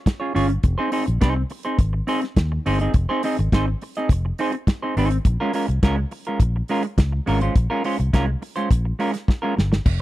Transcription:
0.06 muted clean electric guitar stroke, kick, snare, closed hi-hat
0.20 clean electric guitar C#4 F4 G#4 C#5
0.35 fingered electric bass G1, clean electric guitar C#4 F4 G#4 C#5, open hi-hat
0.49 muted clean electric guitar stroke, closed hi-hat
0.63 fingered electric bass F1, muted clean electric guitar stroke, kick, closed hi-hat
0.78 clean electric guitar C4 D#4 G#4 C5
0.92 clean electric guitar C4 D#4 G#4 C5, open hi-hat
1.06 fingered electric bass A#1, muted clean electric guitar stroke, closed hi-hat
1.21 fingered electric bass C2, clean electric guitar C4 D#4 G#4 C5, kick, snare, closed hi-hat
1.36 muted clean electric guitar stroke
1.50 muted clean electric guitar stroke, open hi-hat
1.63 clean electric guitar C4 D#4 G#4 C5, closed hi-hat
1.79 fingered electric bass G#1, muted clean electric guitar stroke, kick, closed hi-hat
1.93 muted clean electric guitar stroke
2.07 clean electric guitar C4 D#4 G#4 C5, open hi-hat
2.22 muted clean electric guitar stroke, snare, closed hi-hat
2.36 fingered electric bass D#2, muted clean electric guitar stroke, kick, snare, closed hi-hat
2.52 muted clean electric guitar stroke
2.66 fingered electric bass G1, clean electric guitar C4 D#4 G#4 C5, open hi-hat
2.80 clean electric guitar C4 D#4 G#4 D#5, closed hi-hat
2.94 fingered electric bass F1, muted clean electric guitar stroke, kick, closed hi-hat
3.09 clean electric guitar C4 D#4 G#4 C5
3.23 clean electric guitar C4 D#4 G#4 D#5, open hi-hat
3.39 fingered electric bass G#1, muted clean electric guitar stroke, closed hi-hat
3.52 fingered electric bass G#1, clean electric guitar C4 D#4 G#4 C5, kick, snare, closed hi-hat
3.68 muted clean electric guitar stroke
3.81 muted clean electric guitar stroke, open hi-hat
3.95 clean electric guitar C4 D#4 G#4 D#5, closed hi-hat
4.09 fingered electric bass F1, muted clean electric guitar stroke, kick, closed hi-hat
4.25 muted clean electric guitar stroke
4.38 clean electric guitar C4 D#4 G#4 C5, open hi-hat
4.52 muted clean electric guitar stroke, closed hi-hat
4.67 muted clean electric guitar stroke, kick, snare, closed hi-hat
4.82 clean electric guitar C4 D#4 G#4 C5
4.97 fingered electric bass G#1, clean electric guitar C4 D#4 G#4 C5, open hi-hat
5.11 muted clean electric guitar stroke, closed hi-hat
5.25 fingered electric bass A#1, muted clean electric guitar stroke, kick, closed hi-hat
5.40 clean electric guitar G#3 C#4 F4 A#4
5.53 clean electric guitar G#3 C#4 F4 A#4, open hi-hat
5.69 fingered electric bass C2, closed hi-hat
5.83 fingered electric bass C#2, clean electric guitar G#3 C#4 F4 A#4, kick, snare, closed hi-hat
5.98 muted clean electric guitar stroke
6.11 muted clean electric guitar stroke, open hi-hat
6.25 clean electric guitar G#3 C#4 F4 A#4, closed hi-hat
6.40 fingered electric bass A#1, muted clean electric guitar stroke, kick, closed hi-hat
6.56 muted clean electric guitar stroke
6.68 clean electric guitar G#3 C#4 F4 A#4, open hi-hat
6.83 muted clean electric guitar stroke, closed hi-hat
6.98 fingered electric bass C#2, muted clean electric guitar stroke, kick, snare, closed hi-hat
7.12 muted clean electric guitar stroke
7.26 fingered electric bass G#1, clean electric guitar G#3 C#4 F4 A#4, open hi-hat
7.41 clean electric guitar G#3 C#4 F4 C5, closed hi-hat
7.56 fingered electric bass A#1, muted clean electric guitar stroke, kick, closed hi-hat
7.70 clean electric guitar G#3 C#4 F4 A#4
7.84 clean electric guitar G#3 C#4 F4 C5, open hi-hat
7.99 fingered electric bass C2, muted clean electric guitar stroke, closed hi-hat
8.13 fingered electric bass C2, clean electric guitar G#3 C#4 F4 A#4, kick, snare, closed hi-hat
8.27 muted clean electric guitar stroke
8.42 muted clean electric guitar stroke, open hi-hat
8.56 clean electric guitar G#3 C#4 F4 C5, closed hi-hat
8.71 fingered electric bass A#1, muted clean electric guitar stroke, kick, closed hi-hat
8.85 muted clean electric guitar stroke
8.99 clean electric guitar G#3 C#4 F4 A#4, open hi-hat
9.13 muted clean electric guitar stroke, snare, closed hi-hat
9.28 muted clean electric guitar stroke, kick, snare
9.42 clean electric guitar G#3 C#4 F4 A#4
9.56 fingered electric bass G1, muted clean electric guitar stroke, snare
9.72 muted clean electric guitar stroke, snare
9.85 fingered electric bass F1, muted clean electric guitar stroke, kick, crash

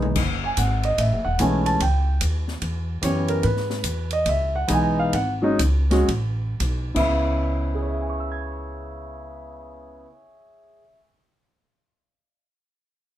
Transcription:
Already playing: upright bass B1, grand piano E3 G#3 B3 D#4
0.02 mid tom
0.16 upright bass F#1, kick, crash
0.44 grand piano G#5
0.57 upright bass G#1, grand piano F#5, kick, hi-hat pedal, ride
0.83 grand piano D#5, ride
0.98 upright bass A1, grand piano E5, kick, ride
1.12 upright bass F#1
1.25 upright bass E1, grand piano F#5
1.39 upright bass B1, grand piano E3 G#3 A3 C#4 G#5, kick, hi-hat pedal, ride
1.66 grand piano A5, ride
1.80 upright bass C#2, grand piano G5, kick, ride
2.21 upright bass D#2, kick, hi-hat pedal, ride
2.48 snare
2.62 upright bass E2, kick, ride
3.02 upright bass F#2, grand piano E3 B3 C#4 G4 C#5, kick, hi-hat pedal, ride
3.28 grand piano A#4, ride
3.43 upright bass G#2, grand piano B4, kick, ride
3.57 snare
3.70 snare
3.84 upright bass E2, kick, hi-hat pedal, ride
4.11 grand piano D#5, ride
4.26 upright bass C#2, grand piano E5, kick, ride
4.56 grand piano F#5
4.68 upright bass B1, grand piano E3 G#3 B3 D#4, kick, hi-hat pedal, ride
4.72 grand piano G#5
4.99 grand piano F5
5.13 upright bass G#1, grand piano F#5, kick, ride
5.42 grand piano F#3 G#3 C#4 D#4
5.59 upright bass C#2, kick, hi-hat pedal, ride
5.90 grand piano F#3 G#3 C#4 F#4, snare, ride
6.08 upright bass A1, kick, ride
6.60 upright bass B1, kick, hi-hat pedal, ride
6.95 upright bass C#2, grand piano C#3 B3 C#4 E4 E5, kick, crash
7.75 grand piano G#4
7.82 grand piano C#5
7.90 grand piano E5
7.99 grand piano G#5
8.09 grand piano C#6
8.20 grand piano E6
8.32 grand piano G#6

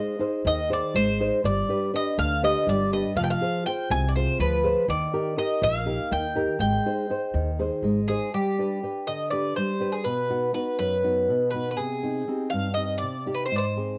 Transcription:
Already playing: nylon-string guitar G#3 D#4 G#4 C5, bouzouki D#5
0.19 nylon-string guitar D#4 G#4 C5
0.45 upright bass D#2, nylon-string guitar D#3, bouzouki D#5
0.69 nylon-string guitar D#4 G#4 C5, bouzouki D5
0.94 upright bass G#1, nylon-string guitar G#3, bouzouki C5
1.20 nylon-string guitar D#4 G#4 C5
1.44 upright bass G1, nylon-string guitar G3, bouzouki D5
1.69 nylon-string guitar D4 G4 B4
1.94 nylon-string guitar D4 G4 B4, bouzouki D#5
2.18 upright bass D2, nylon-string guitar D3, bouzouki F5
2.43 nylon-string guitar D4 G4 B4, bouzouki D#5
2.67 upright bass G1, nylon-string guitar G3, bouzouki D5
2.93 nylon-string guitar D4 G4 B4, bouzouki D#5
3.16 upright bass F1, nylon-string guitar F3, bouzouki F5
3.24 bouzouki G5
3.30 bouzouki F5
3.41 nylon-string guitar F4 G#4 C5
3.66 nylon-string guitar F4 G#4 C5, bouzouki G5
3.90 upright bass C2, nylon-string guitar C3, bouzouki G#5
4.08 bouzouki D5
4.16 nylon-string guitar F4 G#4 C5, bouzouki C5
4.39 upright bass D2, nylon-string guitar F3, bouzouki B4
4.64 nylon-string guitar F4 G#4 C5
4.88 upright bass D#2, nylon-string guitar D#3, bouzouki D5
5.13 nylon-string guitar D#4 G4 A#4
5.37 nylon-string guitar D#4 G4 A#4, bouzouki D#5
5.61 upright bass A#1, nylon-string guitar A#3, bouzouki F5
5.86 nylon-string guitar D#4 G4 A#4
6.11 upright bass D#2, nylon-string guitar D#3, bouzouki G5
6.35 nylon-string guitar D#4 G4 A#4
6.59 upright bass G#1, nylon-string guitar G#3, bouzouki G5
6.86 nylon-string guitar D#4 G#4 C5
7.10 nylon-string guitar D#4 G#4 C5
7.34 upright bass D#2, nylon-string guitar D#3
7.59 nylon-string guitar D#4 G#4 C5
7.82 upright bass G#1, nylon-string guitar G#3
8.08 nylon-string guitar D#4 G#4 C5, bouzouki G#4
8.34 nylon-string guitar G3, bouzouki G4
8.58 nylon-string guitar D4 G4 B4
8.83 nylon-string guitar D4 G4 B4
9.07 nylon-string guitar D3, bouzouki D#5
9.31 nylon-string guitar D4 G4 B4, bouzouki D5
9.56 nylon-string guitar G3, bouzouki C5
9.80 nylon-string guitar D4 G4 B4
9.92 bouzouki G#4
10.04 nylon-string guitar B2, bouzouki B4
10.29 nylon-string guitar B3 D#4 F#4
10.53 nylon-string guitar B3 D#4 F#4, bouzouki B4
10.79 nylon-string guitar F#2, bouzouki B4
11.03 nylon-string guitar B3 D#4 F#4
11.29 nylon-string guitar B2
11.50 nylon-string guitar B3, bouzouki B4
11.55 nylon-string guitar D#4 F#4
11.71 bouzouki B4
11.77 nylon-string guitar C3, bouzouki G#4
12.03 nylon-string guitar C4 D#4 G5
12.28 nylon-string guitar C4 D#4 G4
12.50 nylon-string guitar G2, bouzouki F5
12.74 nylon-string guitar C4 D#4 G4, bouzouki D#5
12.98 bouzouki D5
13.02 nylon-string guitar C3
13.26 nylon-string guitar C4 D#4 G4
13.34 bouzouki B4
13.46 bouzouki C5
13.51 nylon-string guitar G#2
13.56 bouzouki C5 D5
13.76 nylon-string guitar C4 D#4 G#4

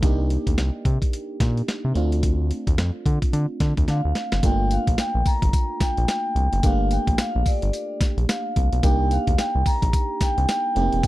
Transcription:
0.02 analog synth bass C2, fm electric piano A#3 D4 D#4 G4, kick, closed hi-hat
0.30 closed hi-hat
0.47 analog synth bass D2, kick, closed hi-hat
0.57 analog synth bass C2, snare, closed hi-hat
0.85 analog synth bass C3, kick, closed hi-hat
1.02 kick, closed hi-hat
1.13 closed hi-hat
1.40 analog synth bass A#2, kick, snare, closed hi-hat
1.57 closed hi-hat
1.68 snare, closed hi-hat
1.85 analog synth bass C3
1.94 analog synth bass D2, fm electric piano A3 C4 D4 F4, closed hi-hat
2.12 closed hi-hat
2.23 kick, closed hi-hat
2.51 closed hi-hat
2.67 analog synth bass D2, kick, closed hi-hat
2.78 analog synth bass F2, snare, closed hi-hat
3.06 analog synth bass D3, kick, closed hi-hat
3.22 kick, closed hi-hat
3.33 analog synth bass D3, closed hi-hat
3.60 analog synth bass D3, kick, snare, closed hi-hat
3.77 analog synth bass D2, kick, closed hi-hat
3.88 analog synth bass D3, vibraphone F5, snare, closed hi-hat
4.05 analog synth bass D2
4.15 snare, closed hi-hat
4.32 analog synth bass F#1, snare, closed hi-hat
4.43 analog synth bass G1, fm electric piano A3 A#3 D4 F4, vibraphone G5, kick, closed hi-hat, tambourine
4.71 vibraphone F5, closed hi-hat, tambourine
4.87 analog synth bass A#1, kick, closed hi-hat
4.98 vibraphone G5, snare, closed hi-hat, tambourine
5.14 analog synth bass A#1
5.25 vibraphone A#5, kick, open hi-hat, tambourine
5.42 analog synth bass G1, kick, closed hi-hat
5.53 kick, closed hi-hat, tambourine
5.80 analog synth bass A#1, vibraphone G5, kick, snare, closed hi-hat, tambourine
5.97 analog synth bass A#1, closed hi-hat
6.08 vibraphone G5, snare, closed hi-hat, tambourine
6.35 analog synth bass C2, closed hi-hat
6.53 analog synth bass F#1, closed hi-hat
6.63 analog synth bass G1, fm electric piano A3 A#3 D4 G4, vibraphone F5, kick, closed hi-hat, tambourine
6.91 vibraphone G5, closed hi-hat, tambourine
7.07 analog synth bass A#1, kick, closed hi-hat
7.18 vibraphone F5, snare, closed hi-hat, tambourine
7.35 analog synth bass A#1
7.46 vibraphone D5, kick, open hi-hat, tambourine
7.62 analog synth bass G1, closed hi-hat
7.73 closed hi-hat, tambourine
8.01 analog synth bass A#1, kick, snare, closed hi-hat, tambourine
8.17 analog synth bass A#1, closed hi-hat
8.29 vibraphone F5, snare, closed hi-hat, tambourine
8.56 analog synth bass C2, kick, closed hi-hat
8.72 analog synth bass B1, closed hi-hat
8.83 analog synth bass C2, fm electric piano A#3 D4 D#4 G4, vibraphone G5, kick, closed hi-hat, tambourine
9.11 vibraphone F5, closed hi-hat, tambourine
9.27 analog synth bass D2, kick, closed hi-hat
9.38 vibraphone G5, snare, closed hi-hat, tambourine
9.55 analog synth bass C2
9.66 vibraphone A#5, kick, open hi-hat, tambourine
9.82 analog synth bass A#1, kick, closed hi-hat
9.93 kick, closed hi-hat, tambourine
10.21 analog synth bass C2, vibraphone G5, kick, snare, closed hi-hat, tambourine
10.37 analog synth bass C2, closed hi-hat
10.48 vibraphone G5, snare, closed hi-hat, tambourine
10.75 analog synth bass F1, fm electric piano A3 C4 D#4 G4, closed hi-hat
10.82 fm electric piano A#3
10.92 analog synth bass E1, closed hi-hat
11.03 analog synth bass F1, kick, closed hi-hat, tambourine

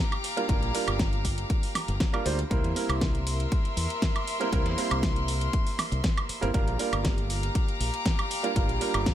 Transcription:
Already playing: grand piano G3 A#3 D4 F4 A#4, string section G4 F5 A#5
0.12 closed hi-hat, high woodblock
0.24 open hi-hat
0.36 grand piano G3 A#3 D4 F4 A#4, closed hi-hat
0.48 fingered electric bass G1, grand piano G3 A#3 D4 F4 A#4, kick, closed hi-hat
0.62 fingered electric bass A#1, closed hi-hat
0.73 grand piano G3 A#3 D4 F4 A#4, open hi-hat
0.87 fingered electric bass G1, closed hi-hat, high woodblock
0.99 kick, snare, closed hi-hat
1.13 closed hi-hat
1.25 kick, open hi-hat
1.38 closed hi-hat
1.50 kick, closed hi-hat
1.63 open hi-hat
1.75 snare, open hi-hat, high woodblock
1.88 fingered electric bass G1, closed hi-hat
2.00 kick, snare, closed hi-hat
2.13 grand piano G3 A#3 D4 F4 A#4, closed hi-hat, high woodblock
2.25 fingered electric bass D2, grand piano G3 A#3 D4 F4 C5, open hi-hat
2.39 closed hi-hat
2.50 fingered electric bass C2, grand piano G3 A#3 C4 E4 A#4, string section A#4 E5 C6, kick, closed hi-hat
2.64 fingered electric bass E2, closed hi-hat
2.75 grand piano G3 A#3 C4 E4 A#4, open hi-hat
2.89 fingered electric bass C2, closed hi-hat, high woodblock
3.01 kick, snare, closed hi-hat
3.15 closed hi-hat
3.27 open hi-hat
3.40 closed hi-hat
3.52 kick, closed hi-hat
3.65 closed hi-hat
3.77 fingered electric bass E2, open hi-hat
3.90 closed hi-hat
4.02 kick, snare, closed hi-hat
4.16 closed hi-hat, high woodblock
4.27 open hi-hat
4.40 grand piano G3 A#3 C4 E4 A#4, closed hi-hat
4.52 fingered electric bass C2, grand piano G3 A#3 C4 E4 A#4, kick, closed hi-hat
4.66 fingered electric bass E2, closed hi-hat
4.77 grand piano G3 A#3 C4 E4 A#4, open hi-hat
4.91 fingered electric bass C2, closed hi-hat, high woodblock
5.03 kick, snare, closed hi-hat
5.16 closed hi-hat
5.28 open hi-hat
5.41 closed hi-hat
5.53 kick, closed hi-hat
5.67 open hi-hat
5.79 snare, open hi-hat, high woodblock
5.92 fingered electric bass C2, closed hi-hat
6.04 kick, snare, closed hi-hat
6.17 closed hi-hat, high woodblock
6.29 muted fingered electric bass stroke, open hi-hat
6.41 fingered electric bass G1, grand piano G3 A#3 C4 E4 A#4, closed hi-hat
6.53 fingered electric bass G1, grand piano G3 A#3 D4 F4 A#4, string section G4 F5 A#5, kick, closed hi-hat
6.67 fingered electric bass A#1, closed hi-hat
6.78 grand piano G3 A#3 D4 F4 A#4, open hi-hat
6.92 fingered electric bass G1, closed hi-hat, high woodblock
7.05 kick, snare, closed hi-hat
7.18 closed hi-hat
7.30 open hi-hat
7.43 closed hi-hat
7.55 kick, closed hi-hat
7.68 closed hi-hat
7.80 fingered electric bass A#1, open hi-hat
7.94 closed hi-hat
8.05 kick, snare, closed hi-hat
8.19 closed hi-hat, high woodblock
8.31 open hi-hat
8.43 grand piano G3 A#3 D4 F4 A#4, closed hi-hat
8.55 fingered electric bass G1, grand piano G3 A#3 D4 F4 A#4, kick, closed hi-hat
8.69 fingered electric bass A#1, closed hi-hat
8.80 grand piano G3 A#3 D4 F4 A#4, open hi-hat
8.94 fingered electric bass G1, closed hi-hat, high woodblock
9.06 kick, snare, closed hi-hat

